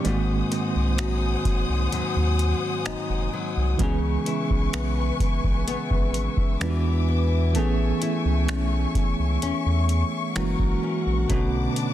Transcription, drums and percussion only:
0.05 closed hi-hat medium
0.52 closed hi-hat medium
0.98 finger snap loud
0.98 closed hi-hat medium
1.45 kick medium
1.45 closed hi-hat medium
1.92 closed hi-hat medium
2.39 closed hi-hat medium
2.86 finger snap loud
2.86 closed hi-hat medium
3.79 kick medium
3.79 closed hi-hat medium
4.26 closed hi-hat medium
4.50 kick medium
4.73 finger snap loud
4.73 closed hi-hat medium
5.20 kick medium
5.20 closed hi-hat medium
5.44 kick loud
5.68 closed hi-hat medium
5.90 kick medium
6.14 closed hi-hat medium
6.37 kick medium
6.61 finger snap loud
6.61 closed hi-hat medium
7.55 closed hi-hat medium
8.02 closed hi-hat medium
8.48 finger snap loud
8.48 closed hi-hat medium
8.95 kick medium
8.95 closed hi-hat medium
9.42 closed hi-hat medium
9.89 closed hi-hat medium
10.36 finger snap loud
10.36 closed hi-hat medium
10.59 kick medium
11.30 kick loud
11.30 closed hi-hat medium
11.76 closed hi-hat medium

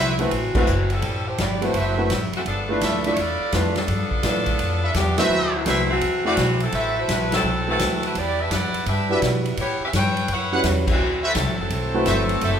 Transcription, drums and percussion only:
0.19 ride soft
0.31 kick soft
0.31 ride medium
0.55 kick medium
0.55 crash medium
0.67 hi-hat pedal medium
0.90 ride soft
1.02 kick soft
1.02 ride medium
1.38 kick soft
1.38 snare medium
1.38 hi-hat pedal medium
1.38 ride medium
1.62 ride medium
1.74 kick soft
1.74 ride medium
2.10 kick soft
2.10 snare medium
2.10 hi-hat pedal medium
2.10 ride medium
2.33 ride soft
2.46 kick soft
2.46 ride medium
2.81 kick soft
2.81 snare medium
2.81 hi-hat pedal medium
2.81 ride medium
3.04 ride medium
3.16 kick soft
3.16 ride medium
3.52 kick soft
3.52 snare medium
3.52 hi-hat pedal medium
3.52 ride medium
3.76 snare medium
3.76 ride soft
3.88 kick soft
3.88 ride medium
4.11 kick medium
4.23 kick soft
4.23 snare medium
4.23 hi-hat pedal medium
4.23 ride medium
4.46 kick medium
4.46 ride soft
4.59 kick soft
4.59 ride medium
4.94 kick soft
4.94 snare medium
4.94 hi-hat pedal medium
4.94 ride medium
5.18 snare medium
5.18 ride medium
5.66 kick soft
5.66 snare medium
5.66 hi-hat pedal medium
5.66 ride medium
6.01 kick soft
6.01 ride medium
6.37 kick soft
6.37 snare medium
6.37 hi-hat pedal medium
6.37 ride medium
6.60 ride soft
6.72 kick soft
6.72 ride medium
7.09 kick soft
7.09 snare medium
7.09 hi-hat pedal medium
7.09 ride medium
7.32 snare medium
7.32 ride medium
7.79 kick soft
7.79 snare medium
7.79 hi-hat pedal medium
7.79 ride medium
8.03 ride soft
8.15 kick soft
8.15 ride medium
8.51 kick soft
8.51 snare medium
8.51 hi-hat pedal medium
8.51 ride medium
8.74 ride medium
8.86 kick soft
8.86 ride medium
9.22 kick soft
9.22 snare medium
9.22 hi-hat pedal medium
9.22 ride medium
9.45 ride soft
9.57 kick soft
9.57 ride medium
9.93 kick soft
9.93 snare medium
9.93 hi-hat pedal medium
9.93 ride medium
10.17 ride soft
10.28 kick soft
10.28 ride medium
10.64 kick soft
10.64 snare medium
10.64 hi-hat pedal medium
10.64 ride medium
10.87 kick medium
10.87 crash medium
11.35 kick soft
11.35 snare medium
11.35 hi-hat pedal medium
11.35 ride medium
11.70 kick soft
11.70 ride medium
12.06 kick soft
12.06 snare medium
12.06 hi-hat pedal medium
12.06 ride medium
12.29 ride soft
12.41 kick soft
12.41 ride medium

